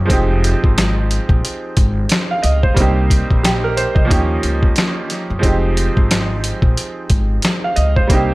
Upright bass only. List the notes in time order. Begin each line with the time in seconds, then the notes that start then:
0.10 F1
0.64 G#1
1.29 A#1
1.77 G#1
2.44 C#2
2.77 C2
3.31 A#1
3.96 C2
4.11 D#2
4.43 C#2
5.30 F#2
5.43 F1
5.97 G#1
6.62 A#1
7.10 G#1
7.77 C#2
8.10 C2